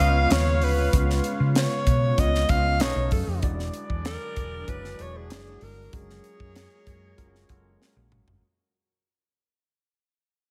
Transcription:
Already playing: C#3 B3 F4 B4 C#5 F5
0.00 C#2 G#3 B3 C#4 F4 B4 F5
0.31 D#2 C#5, snare, closed hi-hat
0.62 D2 B4, open hi-hat
0.93 C#2 G#3 B3 C#4 F4 B4, kick, closed hi-hat
1.10 snare
1.24 closed hi-hat
1.40 C#3
1.55 C#5, snare, closed hi-hat
1.87 B2, kick, closed hi-hat
2.17 C#2 G#3 B3 C#4 F4 B4 D#5, kick, closed hi-hat
2.35 snare
2.49 C#2 G#3 B3 C#4 F4 B4 F5, kick, closed hi-hat
2.80 B1 A3 C#4 D#4 G#4 A4 B4 C#5 D#5, snare, closed hi-hat
2.96 B1
3.11 F#2 A4, kick, open hi-hat
3.27 F2
3.42 E1 D3 F#3 G#3 B3 D4 E4 F#4 G#4 D5, kick, closed hi-hat
3.59 snare
3.74 closed hi-hat
3.90 E2, kick
4.05 A#4, snare, closed hi-hat
4.36 E1, kick, closed hi-hat
4.67 F#1 G#3 D4 E4 F#4 B4 C#5, kick, closed hi-hat
4.84 snare
4.98 E1 G#3 D4 E4 F#4 G#4 C#5, closed hi-hat
5.17 G#4
5.30 F#1, snare, closed hi-hat
5.61 G1 A#4, open hi-hat
5.92 F#1 G#3 A#3 C#4 F4 F#4 G#4 A#4 C#5, kick, closed hi-hat
6.10 snare
6.24 closed hi-hat
6.40 F#2, kick
6.56 snare, closed hi-hat
6.87 F#2, kick, closed hi-hat
7.17 F#1 G#3 C#4 F4 F#4 A#4, kick, closed hi-hat
7.35 snare
7.49 F#1 G#3 C#4 F4 F#4 A4, kick, closed hi-hat
7.56 A#4
7.82 snare
7.96 A#1
8.12 G#1, mid tom
8.27 G1, floor tom

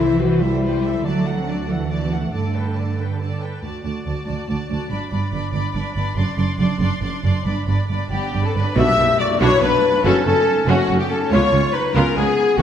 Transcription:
Already playing: C2 E3 E4 E5
0.00 A4 C5
0.19 F#4 B4 C5
0.40 G3 E4 A4 C5 E5
0.63 B4 C5
0.84 A4 C5 E5
1.04 D2 F#3 A3 F#4 D5 A5
1.25 A4 F#5
1.38 C4
1.47 D4 F#4 D5 A5
1.68 E3 A3 A4 F#5
1.89 F#4 D5 A5
2.02 B3
2.11 A3 A4 F#5
2.33 G2 D3 A3 A4 D5 A5
2.55 A4 B4 G5
2.77 A4 D5 A5
2.99 A4 B4 G5
3.20 A4 D5 A5
3.42 A4 B4 G5
3.62 D2 F#4 D5 A5
3.84 D2 F#4 D5 A5
4.05 D2 F#4 D5 A5
4.26 D2 F#4 D5 A5
4.48 D2 F#4 D5 A5
4.69 D2 F#4 D5 A5
4.90 G1 G2 D4 D5 B5
5.11 G1 G2 D4 D5 B5
5.32 G1 G2 D4 D5 B5
5.52 G1 G2 D4 D5 B5
5.73 G1 G2 D4 D5 B5
5.94 G1 G2 D4 D5 B5
6.16 F#1 F#2 D4 D5 C6
6.37 F#1 F#2 D4 D5 C6
6.58 F#1 F#2 D4 D5 C6
6.80 F#1 F#2 D4 D5 C6
7.02 F#1 F#2 D4 D5 C6
7.23 F#1 F#2 D4 D5 C6
7.45 G1 G2 D4 D5 B5
7.67 G1 G2 D4 D5 B5
7.89 G1 G2 D4 D5 B5
8.10 G1 G2 B3 D4 G4 D5 G5 B5
8.32 G1 G2 D4 D5 B5
8.44 C4 A4 A5
8.54 G1 G2 D4 B4 D5 B5
8.76 B1 B2 D4 F#4 G4 E5 E6, tam-tam
8.97 B1 B2 B3 D4
9.19 F#4 D5 D6
9.40 B1 B2 D4 E4 F#4 C#5 C#6
9.61 B1 B2 B3 D4 B4 B5
10.04 F#1 F#2 C#4 F#4 A4 A5
10.25 F#1 F#2 A3 C#4 A4 A5
10.67 F#1 F#2 A3 C#4 F#4 F#5
10.89 F#1 F#2 A3 C#4
10.99 B3 G4 G5
11.10 C#4 A4 A5
11.30 C#2 B3 F4 C#5 C#6
11.52 C#2 G#3 C#4
11.72 D#4 B4 B5
11.94 C#2 B3 C#4 F4 A#4 A#5
12.15 C#2 G#3 B3 C#4 G#4 G#5
12.58 F#1 F#2 A#3 F#4 F#5

